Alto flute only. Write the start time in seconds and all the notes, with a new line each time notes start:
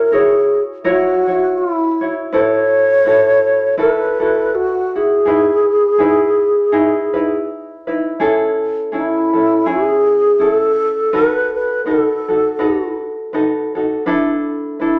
Already playing: A#4
0.13 G#4
0.85 F#4
1.58 E4
2.33 C#5
3.80 B4
4.55 F#4
4.96 G#4
8.95 E4
9.68 G#4
10.42 A4
11.13 B4
11.55 B4
11.86 A4
14.81 E4